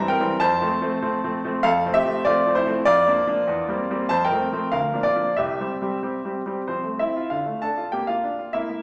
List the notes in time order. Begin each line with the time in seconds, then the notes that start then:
0.00 E3 G3 C4
0.08 A#4 G5
0.20 E3 G3 C4
0.40 F2 C5 A5
0.61 F3 A3 C4
0.81 F3 A3 C4
1.02 F3 A3 C4
1.24 F3 A3 C4
1.44 F3 A3 C4
1.63 F2 A4 F5
1.85 F3 A3 C4
1.94 G4 E5
2.05 F3 A3 C4
2.25 F3 A3 C4 F4 D5
2.46 F3 A3 C4
2.55 E4 C5
2.66 F3 A3 C4
2.85 F2 F4 D5
3.07 F3 A#3 D4
3.27 F3 A#3 D4
3.48 E2
3.68 G3 A#3 C4
3.91 G3 A#3 C4
4.09 F2 C5 A5
4.25 A#4 G5
4.31 F3 A3 C4
4.52 F3 A3 C4
4.72 D2 A#4 F5
4.93 F3 A#3 D4
5.03 F4 D5
5.15 F3 A#3 D4
5.37 C2 G4 E5
5.60 G3 C4 G4
5.82 G3 C4 G4
6.03 G3 C4 G4
6.25 G3 C4 G4
6.46 G3 C4 G4
6.68 F3 C4 C5
6.84 A3
6.99 C4 E4 E5
7.17 F4
7.30 D3 F4 F5
7.46 A3
7.62 D4 A4 A5
7.78 F4
7.92 A#3 G4 G5
8.07 A#3 F4 F5
8.24 D4
8.39 F4
8.53 A#3 E4 E5
8.70 A#3